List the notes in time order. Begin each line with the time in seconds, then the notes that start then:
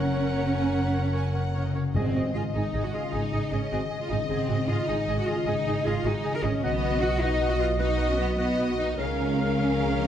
Already playing: F#1 F#2 C#3 A#3 C#4 F#4 A#4 C#5 F#5
0.14 C#3 A#4 C#5 F#5
0.35 A#4 C#5 F#5
0.55 C#3 A#4 C#5 F#5 G#5
0.74 A#3 A#4 C#5 F#5
0.94 A#4 C#5 F#5
1.06 A#5
1.13 A#4 C#5 F#5 G#5
1.33 C#3 A#4 C#5 F#5
1.54 C3 A#4 C#5 F#5
1.65 D#5
1.75 C#3 A#4 C#5 F5 F#5
1.95 G#1 G#2 C4 G#4 D#5 G#5
2.15 G#1 F#4 G#4 D#5 G#5
2.34 G#1 D#4 F4 G#4 D#5 G#5
2.54 G#1 D#3 D#4 G#4 D#5 G#5
2.73 G#1 C#3 G#4 D#5 G#5
2.84 F#4
2.93 D#3 F4 G#4 D#5 G#5
3.12 G#1 G#3 D#4 G#4 D#5 G#5
3.32 G#1 D#4 G#4 D#5 G#5
3.51 G#1 C#4 D#4 G#4 D#5 G#5
3.71 G#1 D#3 C4 F#4 G#4 D#5 G#5
3.90 C#3 G#4 D#5 G#5
4.01 F4
4.09 G#1 D#3 D#4 G#4 D#5 G#5
4.29 G#1 G#2 C4 G#4 D#5 G#5
4.48 G#1 F#4 G#4 D#5 G#5
4.67 G#1 D#4 F4 G#4 D#5 G#5
4.87 G#1 D#3 D#4 G#4 D#5 G#5
5.07 G#1 C#3 G#4 D#5 G#5
5.18 F#4
5.27 D#3 F4 G#4 D#5 G#5
5.46 G#1 G#3 D#4 G#4 D#5 G#5
5.65 G#1 D#4 G#4 D#5 G#5
5.85 G#1 D#4 F4 G#4 D#5 G#5
6.04 G#1 D#3 D#4 F#4 G#4 D#5 G#5
6.24 C#3 G#4 D#5 G#5
6.35 A#4
6.42 G#1 D#3 C#4 D#4 G#4 D#5 G#5
6.62 B1 B2 B3 F#4 B4 D#5 F#5
6.82 B4 D#5 F#5 B5
7.01 D#4 F#4 B4 D#5 F#5
7.20 B3 D#4 F#4 B4 D#5 F#5
7.40 A#3 B4 D#5 F#5
7.50 F#4
7.59 B3 F4 B4 D#5 F#5
7.79 F#3 D#4 F#4 B4 D#5 F#5
7.97 F#4 B4 D#5 F#5
8.09 C#4
8.17 B3 D#4 B4 D#5 F#5
8.37 B3 F#4 B4 D#5 F#5
8.57 A#3 B4 D#5 F#5
8.78 D#4 B4 D#5 F#5
8.97 C#2 C#3 C#4 G#4 A#4 C#5 F5 G#5
9.17 F4 A#4 F5 G#5
9.38 A#4 F5 G#5
9.57 F3 G#4 A#4 F5 G#5
9.78 D#3 A#4 F5 G#5
9.99 F3 A#4 D#5 F5 G#5